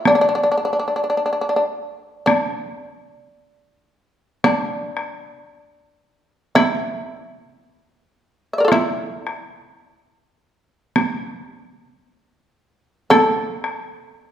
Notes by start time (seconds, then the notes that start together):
0.05 D4, taiko rim, taiko high
0.15 D4
0.21 D4
0.29 D4
0.35 D4
0.43 D4
0.52 D4
0.57 D4
0.65 D4
0.73 D4
0.79 D4
0.88 D4
0.96 D4
1.04 D4
1.10 D4
1.17 D4
1.26 D4
1.33 D4
1.41 D4
1.49 D4
1.56 D4
2.26 D4, taiko rim, taiko high
4.44 D4, taiko rim, taiko high
4.97 taiko rim
6.55 E4, taiko rim, taiko high
8.53 E5
8.58 A#4 D5
8.65 F4 A4
8.72 E4, taiko rim, taiko high
9.27 taiko rim
10.96 taiko rim, taiko high
13.10 A4, taiko rim, taiko high
13.64 taiko rim